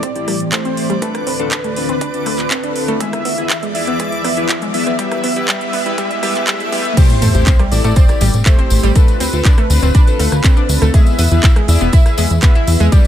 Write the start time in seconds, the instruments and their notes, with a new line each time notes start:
Already playing: ambient pad A2 E3 C4 G4, analog synth lead D5, synth texture D5 D6, riser
0.03 synth pluck C4, kick, closed hi-hat
0.15 analog polysynth A3 C4 E4 G4, closed hi-hat
0.28 synth pluck G3, cross-stick, open hi-hat
0.40 closed hi-hat
0.52 analog polysynth A3 C4 E4 G4, synth pluck A3, analog synth lead C5, kick, clap, closed hi-hat
0.65 synth pluck C4, closed hi-hat
0.77 open hi-hat
0.90 synth pluck G3, closed hi-hat
1.02 ambient pad D2 D3 F4, synth pluck A3, analog polysynth C4 D4 F4 A4, analog synth lead B4, kick, closed hi-hat
1.15 cross-stick, closed hi-hat
1.27 synth pluck C4, open hi-hat
1.39 analog polysynth C4 D4 F4 A4
1.51 synth pluck D4, kick, clap, closed hi-hat
1.64 synth pluck A3, closed hi-hat
1.76 analog polysynth C4 D4 F4 B4, open hi-hat
1.89 synth pluck C4, closed hi-hat
2.01 synth pluck D4, kick, closed hi-hat
2.14 analog polysynth C4 D4 F4 A4, closed hi-hat
2.26 synth pluck A3, cross-stick, open hi-hat
2.39 clap, closed hi-hat
2.51 synth pluck C4, analog polysynth C4 D4 F4 A4, kick, clap, closed hi-hat
2.63 synth pluck D4, closed hi-hat
2.76 open hi-hat
2.88 synth pluck A3, closed hi-hat
3.00 ambient pad E2 E3 B3 G#4, synth pluck G#3, analog polysynth B3 E4 G#4 B4, analog synth lead E5, kick, closed hi-hat
3.13 cross-stick, closed hi-hat
3.25 synth pluck B3, open hi-hat
3.38 analog polysynth B3 E4 G#4 B4, closed hi-hat
3.50 synth pluck E4, kick, clap, closed hi-hat
3.63 synth pluck G#3, closed hi-hat
3.75 analog polysynth B3 E4 G#4 D5, analog synth lead E5, open hi-hat
3.87 synth pluck B3, closed hi-hat
3.99 synth pluck G#3, analog polysynth B3 E4 G#4 B4, analog synth lead E5, kick, closed hi-hat
4.12 closed hi-hat
4.24 synth pluck B3, cross-stick, open hi-hat
4.37 analog polysynth B3 E4 G#4 B4, closed hi-hat
4.49 synth pluck E4, kick, clap, closed hi-hat
4.62 synth pluck G#3, closed hi-hat
4.74 analog polysynth B3 E4 G#4 D5, analog synth lead E5, open hi-hat
4.87 synth pluck B3, closed hi-hat
4.99 ambient pad G2 G4, synth pluck G3, analog polysynth B3 E4 G4 B4, analog synth lead E5, kick, closed hi-hat
5.12 cross-stick, closed hi-hat
5.24 synth pluck B3, open hi-hat
5.36 analog polysynth B3 E4 G4 B4, closed hi-hat
5.48 synth pluck G3, analog polysynth B3 E4 G4 B4, analog synth lead E5, kick, clap, closed hi-hat
5.61 closed hi-hat
5.73 synth pluck B3, open hi-hat
5.86 analog polysynth B3 E4 G4 B4, closed hi-hat
5.98 synth pluck G3, analog polysynth B3 E4 G4 B4, analog synth lead E5, kick, closed hi-hat
6.11 closed hi-hat
6.23 synth pluck G3, analog polysynth B3 E4 G4 B4, analog synth lead E5, cross-stick, open hi-hat
6.35 clap, closed hi-hat
6.47 synth pluck G3, analog polysynth B3 E4 G4 B4, analog synth lead E5, kick, clap, closed hi-hat
6.60 closed hi-hat
6.72 synth pluck G3, analog polysynth B3 E4 G4 B4, analog synth lead E5, open hi-hat
6.85 closed hi-hat
6.97 synth pluck G3, ambient pad A3 C4 G4, analog polysynth A3 C4 E4 G4, analog synth lead C5, kick, closed hi-hat, crash, tambourine, sub drop
7.09 closed hi-hat, tambourine
7.22 analog synth bass A1, synth pluck A3, open hi-hat, tambourine
7.34 analog synth bass A1, analog polysynth A3 C4 E4 G4, closed hi-hat, tambourine
7.47 synth pluck C4, kick, clap, closed hi-hat, tambourine
7.59 synth pluck G3, cross-stick, closed hi-hat
7.72 analog synth bass A1, analog polysynth A3 C4 E4 A4, analog synth lead D5, open hi-hat, tambourine
7.84 analog synth bass A2, synth pluck A3, closed hi-hat, tambourine
7.96 synth pluck C4, kick, closed hi-hat, tambourine
8.08 analog polysynth A3 C4 E4 G4, cross-stick, closed hi-hat, tambourine
8.21 analog synth bass A1, synth pluck G3, open hi-hat, tambourine
8.34 analog synth bass A1, closed hi-hat, tambourine
8.46 synth pluck A3, analog polysynth A3 C4 E4 G4, analog synth lead C5, kick, clap, closed hi-hat, tambourine
8.59 synth pluck C4, closed hi-hat
8.70 analog synth bass A1, open hi-hat, tambourine
8.83 analog synth bass A1, synth pluck G3, closed hi-hat, tambourine
8.95 ambient pad D3 A3 F4, synth pluck A3, analog polysynth C4 D4 F4 A4, analog synth lead B4, kick, closed hi-hat, tambourine
9.08 closed hi-hat, tambourine
9.20 analog synth bass D2, synth pluck C4, open hi-hat, tambourine
9.33 analog synth bass D2, analog polysynth C4 D4 F4 A4, closed hi-hat, tambourine
9.45 synth pluck D4, kick, clap, closed hi-hat, tambourine
9.58 synth pluck A3, cross-stick, closed hi-hat
9.70 analog synth bass D2, analog polysynth C4 D4 F4 B4, open hi-hat, tambourine
9.83 analog synth bass D1, synth pluck C4, closed hi-hat, tambourine
9.95 synth pluck D4, kick, closed hi-hat, tambourine
10.07 analog polysynth C4 D4 F4 A4, closed hi-hat, tambourine
10.19 analog synth bass D2, synth pluck A3, open hi-hat, tambourine
10.32 analog synth bass D2, cross-stick, closed hi-hat, tambourine
10.44 synth pluck C4, analog polysynth C4 D4 F4 A4, kick, clap, closed hi-hat, tambourine
10.57 synth pluck D4, closed hi-hat
10.69 analog synth bass D2, open hi-hat, tambourine
10.82 analog synth bass D2, synth pluck A3, cross-stick, closed hi-hat, tambourine
10.94 ambient pad E3 E4 G#4 B4, synth pluck G#3, analog polysynth B3 E4 G#4 B4, analog synth lead E5, kick, closed hi-hat, tambourine
11.07 closed hi-hat, tambourine
11.19 analog synth bass E2, synth pluck B3, open hi-hat, tambourine
11.31 analog synth bass E2, analog polysynth B3 E4 G#4 B4, closed hi-hat, tambourine
11.43 synth pluck E4, kick, clap, closed hi-hat, tambourine
11.56 synth pluck G#3, cross-stick, closed hi-hat
11.68 analog synth bass E2, analog polysynth B3 E4 G#4 D5, analog synth lead E5, open hi-hat, tambourine
11.81 analog synth bass E1, synth pluck B3, closed hi-hat, tambourine
11.93 synth pluck E4, kick, closed hi-hat, tambourine
12.06 analog polysynth B3 E4 G#4 B4, cross-stick, closed hi-hat, tambourine
12.18 analog synth bass E2, synth pluck G#3, open hi-hat, tambourine
12.30 analog synth bass E2, closed hi-hat, tambourine
12.42 analog polysynth B3 E4 G#4 B4, synth pluck B3, analog synth lead E5, kick, clap, closed hi-hat, tambourine
12.55 synth pluck E4, closed hi-hat
12.67 analog synth bass E2, open hi-hat, tambourine
12.80 analog synth bass E2, synth pluck G#3, closed hi-hat, tambourine
12.92 ambient pad G3 D4 B4, synth pluck G3, analog polysynth D4 E4 G4 B4, analog synth lead D5, kick, closed hi-hat, tambourine